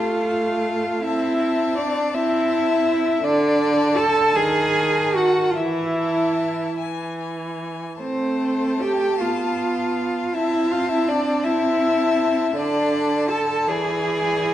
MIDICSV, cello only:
0, 0, Header, 1, 2, 480
1, 0, Start_track
1, 0, Key_signature, 0, "minor"
1, 0, Tempo, 738007
1, 664, Time_signature, 6, 3, 24, 8
1, 2578, Tempo, 779221
1, 3058, Tempo, 816327
1, 4978, Tempo, 790514
1, 5938, Tempo, 741656
1, 8338, Tempo, 804290
1, 9079, End_track
2, 0, Start_track
2, 0, Title_t, "Cello"
2, 0, Program_c, 0, 42
2, 0, Note_on_c, 0, 65, 59
2, 671, Note_on_c, 0, 64, 64
2, 681, Note_off_c, 0, 65, 0
2, 1154, Note_on_c, 0, 62, 69
2, 1164, Note_off_c, 0, 64, 0
2, 1391, Note_on_c, 0, 64, 68
2, 1400, Note_off_c, 0, 62, 0
2, 2098, Note_off_c, 0, 64, 0
2, 2101, Note_on_c, 0, 62, 82
2, 2581, Note_on_c, 0, 69, 92
2, 2590, Note_off_c, 0, 62, 0
2, 2818, Note_on_c, 0, 68, 88
2, 2827, Note_off_c, 0, 69, 0
2, 3302, Note_on_c, 0, 66, 73
2, 3310, Note_off_c, 0, 68, 0
2, 3505, Note_on_c, 0, 65, 49
2, 3514, Note_off_c, 0, 66, 0
2, 3545, Note_on_c, 0, 64, 66
2, 3554, Note_off_c, 0, 65, 0
2, 4262, Note_off_c, 0, 64, 0
2, 4978, Note_on_c, 0, 60, 57
2, 5461, Note_on_c, 0, 67, 64
2, 5470, Note_off_c, 0, 60, 0
2, 5707, Note_on_c, 0, 65, 55
2, 5716, Note_off_c, 0, 67, 0
2, 6430, Note_on_c, 0, 64, 65
2, 6439, Note_off_c, 0, 65, 0
2, 6668, Note_on_c, 0, 65, 68
2, 6677, Note_off_c, 0, 64, 0
2, 6783, Note_off_c, 0, 65, 0
2, 6792, Note_on_c, 0, 64, 61
2, 6903, Note_on_c, 0, 62, 67
2, 6913, Note_off_c, 0, 64, 0
2, 7139, Note_on_c, 0, 64, 68
2, 7149, Note_off_c, 0, 62, 0
2, 7855, Note_off_c, 0, 64, 0
2, 7858, Note_on_c, 0, 62, 71
2, 8337, Note_on_c, 0, 69, 67
2, 8346, Note_off_c, 0, 62, 0
2, 8566, Note_on_c, 0, 68, 69
2, 8575, Note_off_c, 0, 69, 0
2, 9079, Note_off_c, 0, 68, 0
2, 9079, End_track
0, 0, End_of_file